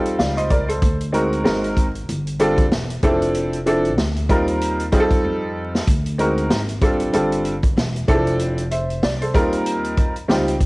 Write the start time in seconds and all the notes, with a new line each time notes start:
Already playing: G3 C4 D#4 F4 A4
0.06 closed hi-hat
0.19 C#2 D5 F5, snare
0.37 C5 D#5, closed hi-hat
0.50 A#4 D5, kick, closed hi-hat
0.68 A4 C5, closed hi-hat
0.82 D2, kick, closed hi-hat
1.01 closed hi-hat
1.12 G#3 C4 D#4 F#4 A#4, closed hi-hat
1.33 closed hi-hat
1.44 G#1 G#3 C4 D#4 F#4 A#4, snare
1.64 closed hi-hat
1.77 kick, closed hi-hat
1.95 closed hi-hat
2.09 G1, closed hi-hat
2.27 closed hi-hat
2.39 G3 C4 D4 F4 A4, closed hi-hat
2.58 kick, closed hi-hat
2.72 E1, snare
2.90 closed hi-hat
3.03 F1 E3 C4 D4 E4 A4, kick, closed hi-hat
3.10 F3
3.22 closed hi-hat
3.35 closed hi-hat
3.53 closed hi-hat
3.66 F3 C4 D4 E4 A4, closed hi-hat
3.85 closed hi-hat
3.98 D2, snare
4.16 closed hi-hat
4.29 D#2 G3 C4 D#4 F4 A#4, kick, closed hi-hat
4.48 closed hi-hat
4.61 closed hi-hat
4.80 closed hi-hat
4.92 G3 C4 D#4 F4 G#4, kick, closed hi-hat
5.00 A4
5.11 kick, closed hi-hat
5.25 F2
5.75 snare
5.87 D2, kick, closed hi-hat
6.06 closed hi-hat
6.18 G#3 C4 D#4 F#4 A#4, closed hi-hat
6.38 closed hi-hat
6.50 G#1, snare
6.69 closed hi-hat
6.82 G3 C4 D4 F4 A4, kick, closed hi-hat
7.00 closed hi-hat
7.13 G1 G3 C4 D4 F4 A4, closed hi-hat
7.32 closed hi-hat
7.45 closed hi-hat
7.63 kick, closed hi-hat
7.77 E1, snare
7.96 closed hi-hat
8.08 F1 E3 C4 D4 E4 A4, kick, closed hi-hat
8.14 F3
8.27 closed hi-hat
8.39 closed hi-hat
8.58 closed hi-hat
8.71 C5 E5, closed hi-hat
8.90 closed hi-hat
9.03 C2 D5, snare
9.22 A4 C5, closed hi-hat
9.34 D#2 G3 C4 D#4 F4 A#4, kick, closed hi-hat
9.52 closed hi-hat
9.66 closed hi-hat
9.84 closed hi-hat
9.97 kick, closed hi-hat
10.16 closed hi-hat
10.28 C#2 G3 C4 D#4 F4 G4, snare
10.48 closed hi-hat
10.61 kick, closed hi-hat